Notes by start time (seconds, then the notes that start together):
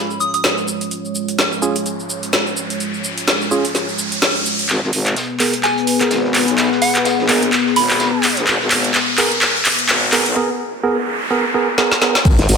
Already playing: G#3 F4 C#5
0.11 shaker
0.20 D#6, shaker
0.34 D#6, closed hi-hat, shaker
0.44 snare, closed hi-hat, shaker
0.58 shaker
0.68 shaker
0.81 closed hi-hat, shaker
0.91 closed hi-hat, riser, shaker
1.05 shaker
1.15 shaker
1.28 closed hi-hat, shaker
1.39 snare, closed hi-hat, shaker
1.52 shaker
1.62 C#4 F4 G#4, shaker
1.76 closed hi-hat, shaker
1.86 closed hi-hat, shaker
2.00 shaker
2.10 shaker
2.23 closed hi-hat, shaker
2.33 snare, closed hi-hat, shaker
2.47 shaker
2.57 shaker
2.70 closed hi-hat, shaker
2.80 closed hi-hat, shaker
2.94 shaker
3.04 shaker
3.18 closed hi-hat, shaker
3.28 snare, closed hi-hat, shaker
3.41 shaker
3.51 C#4 F4 G#4, shaker
3.65 closed hi-hat, shaker
3.75 snare, closed hi-hat, shaker
3.89 shaker
3.99 shaker
4.12 closed hi-hat, shaker
4.22 snare, closed hi-hat, shaker
4.36 shaker
4.46 shaker
4.59 closed hi-hat, shaker
4.69 G#1 B3 G#4 B4, clap, closed hi-hat, tambourine, riser
4.83 G#1, snare
4.93 G#1, open hi-hat, tambourine
5.06 clap, closed hi-hat
5.16 snare, closed hi-hat, tambourine
5.40 B3 G#4 A#4, snare, clap, open hi-hat, tambourine
5.53 closed hi-hat
5.64 G#5, clap, closed hi-hat, tambourine
5.78 closed hi-hat
5.87 open hi-hat, tambourine
6.01 B3 G#4 A#4, clap, closed hi-hat
6.10 G#1, snare, closed hi-hat, tambourine
6.24 snare
6.35 clap, open hi-hat, tambourine
6.48 B1, snare, closed hi-hat
6.58 clap, closed hi-hat, tambourine
6.72 snare
6.82 F#5, open hi-hat, tambourine
6.95 clap, closed hi-hat
7.05 snare, closed hi-hat, tambourine
7.19 A#1, snare
7.29 B3 G#4 A#4, clap, open hi-hat, tambourine
7.43 closed hi-hat
7.52 clap, closed hi-hat, tambourine
7.66 snare
7.76 G#1 B5, open hi-hat, tambourine
7.90 clap, open hi-hat
8.00 snare, closed hi-hat, tambourine
8.23 clap, open hi-hat, tambourine
8.36 A#1, snare, closed hi-hat
8.47 G#1, clap, closed hi-hat, tambourine
8.60 G#1, snare
8.71 G#1, clap, open hi-hat, tambourine
8.84 closed hi-hat
8.94 snare, clap, closed hi-hat, tambourine
9.18 B3 G#4 A#4, snare, clap, open hi-hat, tambourine
9.32 closed hi-hat
9.42 clap, closed hi-hat, tambourine
9.56 closed hi-hat
9.65 clap, open hi-hat, tambourine
9.79 closed hi-hat
9.89 G#1, snare, clap, closed hi-hat, tambourine
10.03 snare
10.12 B3 G#4 A#4, clap, open hi-hat, tambourine
10.26 B1, snare, closed hi-hat
10.36 B3 G#4 A#4, noise sweep
10.83 B3 G#4 A#4
11.31 B3 G#4 A#4
11.54 B3 G#4 A#4
11.78 B3 G#4 A#4, snare
11.92 snare
12.02 B3 G#4 A#4, snare
12.15 snare
12.25 G#1 B3, kick, crash, tambourine, shaker
12.38 G#1, snare, closed hi-hat
12.49 G#1, open hi-hat, tambourine, shaker